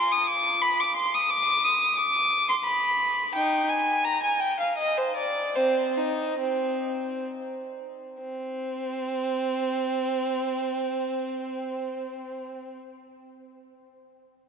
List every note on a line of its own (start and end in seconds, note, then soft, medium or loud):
0.00 0.10 C6 loud
0.11 0.28 D#6 medium
0.27 0.61 D6 medium
0.62 0.79 B5 loud
0.80 0.96 D6 medium
0.97 1.13 C6 medium
1.14 1.30 D#6 medium
1.30 1.63 D6 loud
1.64 1.96 D#6 medium
1.96 2.46 D6 loud
2.49 2.55 C6 medium
2.64 3.31 B5 loud
3.35 3.66 D#4 medium
3.35 3.68 G5 medium
3.69 4.04 G#5 medium
4.04 4.21 A#5 loud
4.23 4.40 G#5 medium
4.40 4.58 G5 medium
4.60 4.77 F5 medium
4.78 4.95 D#5 medium
4.97 5.15 C5 medium
5.16 5.54 D5 medium
5.56 5.93 C4 medium
5.56 5.96 C5 medium
5.97 6.39 D#4 medium
6.40 7.26 C4 medium
8.21 12.76 C4 medium